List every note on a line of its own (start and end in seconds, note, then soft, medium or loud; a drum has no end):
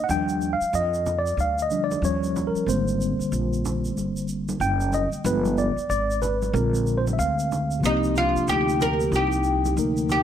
0.04 0.09 F#5 medium
0.09 0.59 D#2 loud
0.09 0.55 F3 medium
0.09 0.55 G3 medium
0.09 0.56 D4 medium
0.09 0.54 G5 loud
0.09 shaker medium
0.29 shaker soft
0.41 shaker soft
0.53 0.75 F5 medium
0.61 muted upright bass stroke soft
0.61 shaker soft
0.73 1.35 F2 medium
0.73 1.19 D#5 loud
0.73 shaker medium
0.94 shaker soft
1.06 low conga medium
1.06 shaker medium
1.19 1.40 D5 medium
1.26 shaker soft
1.37 1.99 D2 medium
1.37 1.62 F5 medium
1.37 high conga soft
1.37 shaker medium
1.59 1.83 D#5 medium
1.59 shaker medium
1.71 2.00 F3 soft
1.71 2.00 G3 soft
1.71 2.00 D4 medium
1.71 shaker soft
1.84 2.05 D5 medium
1.91 high conga medium
1.91 shaker medium
2.02 2.52 D#2 medium
2.02 2.64 F3 medium
2.02 2.64 G3 medium
2.02 2.65 C#4 medium
2.02 2.48 C#5 medium
2.02 shaker medium
2.24 shaker soft
2.36 low conga medium
2.36 shaker soft
2.47 2.69 A#4 medium
2.55 muted upright bass stroke soft
2.55 shaker soft
2.66 3.16 G#1 medium
2.66 5.22 D3 medium
2.66 5.21 G3 medium
2.66 5.21 A#3 medium
2.66 5.22 C4 soft
2.66 4.25 C5 medium
2.66 shaker medium
2.88 shaker soft
3.01 shaker soft
3.19 muted upright bass stroke soft
3.19 shaker soft
3.32 3.95 A#1 medium
3.32 shaker medium
3.53 shaker soft
3.65 low conga medium
3.65 shaker medium
3.85 shaker soft
3.95 4.57 G1 medium
3.95 high conga soft
3.95 shaker medium
4.17 shaker medium
4.28 shaker soft
4.49 high conga medium
4.49 shaker medium
4.60 5.10 F#1 medium
4.60 4.94 G5 loud
4.60 shaker medium
4.81 shaker soft
4.93 5.09 D#5 medium
4.93 low conga medium
4.93 shaker medium
5.12 muted upright bass stroke soft
5.12 shaker soft
5.24 5.74 G1 loud
5.24 5.71 F3 medium
5.24 5.71 G#3 soft
5.24 5.72 B3 medium
5.24 5.56 B4 medium
5.24 shaker medium
5.45 high conga medium
5.45 shaker soft
5.58 5.89 D5 medium
5.58 high conga soft
5.58 shaker soft
5.76 muted upright bass stroke soft
5.76 shaker soft
5.89 6.51 G#1 medium
5.89 6.20 D5 loud
5.89 shaker medium
6.11 shaker soft
6.22 6.52 B4 medium
6.22 low conga medium
6.22 shaker medium
6.42 high conga medium
6.42 shaker soft
6.53 7.15 A#1 loud
6.53 7.79 D3 medium
6.53 7.79 G#3 soft
6.53 7.79 C4 medium
6.53 6.99 A#4 medium
6.53 high conga soft
6.53 shaker medium
6.74 shaker medium
6.87 shaker soft
6.98 7.05 C5 medium
7.07 high conga medium
7.07 shaker medium
7.13 7.19 E5 medium
7.18 7.80 D2 loud
7.18 7.79 F5 medium
7.18 shaker medium
7.39 shaker soft
7.52 low conga medium
7.52 shaker soft
7.71 shaker soft
7.80 8.33 C2 medium
7.80 9.71 C3 medium
7.80 9.72 F3 medium
7.80 9.73 A#3 medium
7.80 8.13 C4 medium
7.84 9.74 C4 medium
7.84 8.17 D#4 medium
7.84 9.75 G4 medium
7.84 shaker medium
8.04 shaker soft
8.15 8.45 D4 medium
8.15 8.49 F4 medium
8.15 shaker soft
8.35 muted upright bass stroke soft
8.35 shaker soft
8.48 9.09 D2 medium
8.48 8.78 D#4 medium
8.48 8.82 G4 medium
8.48 shaker medium
8.69 shaker soft
8.80 9.10 G4 medium
8.80 9.14 A#4 loud
8.80 low conga medium
8.80 shaker soft
9.00 shaker soft
9.12 9.73 C2 loud
9.12 10.05 D#4 medium
9.12 10.10 G4 medium
9.12 high conga soft
9.12 shaker medium
9.32 shaker soft
9.44 shaker soft
9.65 high conga medium
9.65 shaker medium
9.75 10.23 D2 medium
9.75 10.23 C3 soft
9.75 10.23 F3 soft
9.75 10.23 A#3 soft
9.75 10.23 D#4 soft
9.75 10.23 A#4 medium
9.75 shaker medium
9.97 shaker soft
10.09 10.23 D#4 medium
10.09 10.20 G4 medium
10.09 low conga medium
10.09 shaker soft